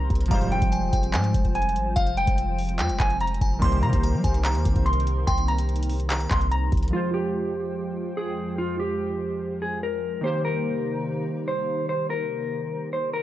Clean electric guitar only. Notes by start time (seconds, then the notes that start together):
0.31 F5
0.52 G5
1.55 G#5
1.96 F5
2.17 G5
3.00 G#5
3.21 A#5
3.62 C6
3.83 A#5
4.86 C6
5.27 C6
5.48 A#5
6.31 C6
6.51 A#5
6.93 F4
7.14 G4
8.17 G#4
8.58 F4
8.80 G4
9.62 G#4
9.83 A#4
10.24 C5
10.45 A#4
11.48 C5
11.89 C5
12.10 A#4
12.93 C5
13.13 A#4